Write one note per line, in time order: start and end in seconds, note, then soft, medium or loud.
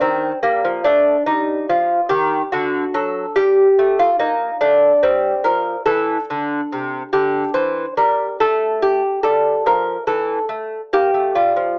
0.01 0.31 D#3 soft
0.01 0.41 C4 medium
0.43 0.63 G3 soft
0.43 0.83 A#3 medium
0.65 0.84 F3 medium
0.84 1.16 A3 medium
0.84 1.25 D4 medium
1.26 1.57 G3 soft
1.26 1.67 D#4 medium
1.69 2.00 F3 soft
1.69 2.10 F4 medium
2.09 2.41 D#3 medium
2.09 2.51 G4 medium
2.52 2.83 D3 medium
2.52 2.93 F#4 medium
2.94 3.25 F#3 medium
2.94 3.35 A4 medium
3.36 3.67 G3 medium
3.36 3.96 G4 medium
3.79 4.09 A3 medium
3.99 4.19 F4 medium
4.19 4.50 A#3 soft
4.19 4.60 D#4 medium
4.61 4.91 A3 medium
4.61 5.01 D4 medium
5.03 5.33 G3 soft
5.03 5.43 C4 medium
5.44 5.75 F3 soft
5.44 5.85 A#4 medium
5.86 6.17 E3 medium
5.86 7.08 A4 medium
6.30 6.60 D3 medium
6.72 7.02 C3 soft
7.13 7.43 D3 medium
7.13 7.53 G4 medium
7.54 7.85 E3 soft
7.54 7.95 C5 medium
7.97 8.28 G3 soft
7.97 8.38 A#4 medium
8.40 9.01 A3 medium
8.40 8.80 A4 medium
8.82 9.22 G4 medium
9.23 9.54 G3 soft
9.23 9.64 A4 medium
9.66 9.97 F3 soft
9.66 10.07 A#4 medium
10.07 10.38 E3 soft
10.07 10.48 A4 medium
10.49 10.80 A3 soft
10.93 11.13 A#3 medium
10.93 11.34 G4 medium
11.14 11.35 A3 soft
11.35 11.56 G3 soft
11.35 11.77 F4 medium
11.56 11.77 F3 soft